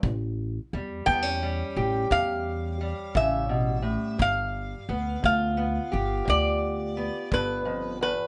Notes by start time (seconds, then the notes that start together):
0.03 A1 A2, kick
0.73 E2 G3
1.06 E2 E3 B3 G5, kick
1.22 C#4
1.43 G3
1.76 A1 G4
2.10 E2 A2 F5, kick
2.81 G3
3.15 A1 C#3 E5, kick
3.49 B2
3.82 A2
4.18 G1 G2 F5, kick
4.89 D2 B3
5.23 D2 D3 F4 F5, kick
5.57 B3
5.92 G1 G4
6.25 D2 G2, kick
6.30 D5
6.97 B3
7.31 G1 G2 B4, kick
7.65 F2
8.01 E2 B4